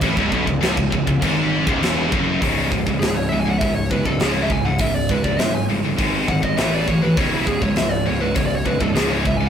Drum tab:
CC |x---x---x---x---|----------------|----------------|----------------|
HH |----------------|o---o---o---o---|o---o---o---o---|o---o---o---o---|
SD |----o-------o---|----o-------o---|----o-------o---|----o-------o---|
BD |oooo-oooo--o--o-|o-oo----o-oo--o-|o-oo----o-oo--o-|o-oo----o-oo--o-|